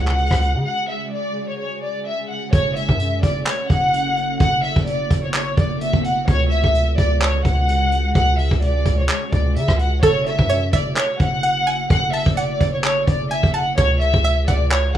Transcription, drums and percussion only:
0.07 clap
0.18 closed hi-hat
0.26 closed hi-hat
0.31 kick, cross-stick, closed hi-hat
0.42 closed hi-hat
2.53 kick, closed hi-hat
2.76 closed hi-hat
2.89 kick
3.00 closed hi-hat
3.23 kick, closed hi-hat
3.46 cross-stick, clap, closed hi-hat
3.70 kick, closed hi-hat
3.94 closed hi-hat
4.17 closed hi-hat
4.40 kick, closed hi-hat
4.64 open hi-hat
4.76 kick
4.87 closed hi-hat
5.10 kick, closed hi-hat
5.34 cross-stick, clap, closed hi-hat
5.57 kick, closed hi-hat
5.81 closed hi-hat
5.93 kick
6.04 closed hi-hat
6.28 kick, closed hi-hat
6.51 closed hi-hat
6.64 kick
6.75 closed hi-hat
6.98 kick, closed hi-hat
7.21 clap, closed hi-hat
7.45 kick, closed hi-hat
7.69 closed hi-hat
7.92 closed hi-hat
8.15 kick, closed hi-hat
8.39 open hi-hat
8.51 kick
8.62 closed hi-hat
8.85 kick, closed hi-hat
9.09 clap, closed hi-hat
9.32 kick, closed hi-hat
9.56 closed hi-hat
9.68 kick, cross-stick
9.79 closed hi-hat
10.03 kick, closed hi-hat
10.26 closed hi-hat
10.39 kick
10.50 closed hi-hat
10.73 kick, closed hi-hat
10.96 cross-stick, clap, closed hi-hat
11.20 kick, closed hi-hat
11.44 closed hi-hat
11.67 closed hi-hat
11.90 kick, closed hi-hat
12.14 open hi-hat
12.26 kick
12.37 closed hi-hat
12.60 kick, closed hi-hat
12.84 clap, closed hi-hat
13.07 kick, closed hi-hat
13.31 closed hi-hat
13.43 kick
13.54 closed hi-hat
13.78 kick, closed hi-hat
14.01 closed hi-hat
14.14 kick
14.25 closed hi-hat
14.48 kick, closed hi-hat
14.71 clap, closed hi-hat

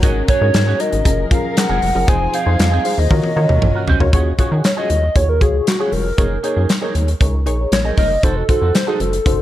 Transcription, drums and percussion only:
0.03 kick, closed hi-hat
0.28 kick, closed hi-hat
0.54 snare, clap, closed hi-hat
0.80 closed hi-hat
0.93 closed hi-hat
1.05 kick, closed hi-hat
1.31 kick, closed hi-hat
1.57 snare, clap, closed hi-hat
1.82 open hi-hat
2.08 kick, closed hi-hat
2.34 closed hi-hat
2.59 snare, clap, closed hi-hat
2.85 open hi-hat
3.11 kick, high tom
3.24 high tom
3.49 mid tom
3.62 mid tom
3.88 floor tom
4.00 floor tom
4.13 kick, closed hi-hat
4.38 kick, closed hi-hat
4.64 snare, clap, closed hi-hat
4.90 closed hi-hat
5.16 kick, closed hi-hat
5.41 kick, closed hi-hat
5.67 snare, clap, closed hi-hat
5.92 open hi-hat
6.18 kick, closed hi-hat
6.44 closed hi-hat
6.69 snare, clap, closed hi-hat
6.95 closed hi-hat
7.08 closed hi-hat
7.21 kick, closed hi-hat
7.47 closed hi-hat
7.72 snare, clap, closed hi-hat
7.97 kick, open hi-hat
8.23 kick, closed hi-hat
8.49 kick, closed hi-hat
8.75 snare, clap, closed hi-hat
9.00 closed hi-hat
9.13 closed hi-hat
9.26 kick, closed hi-hat

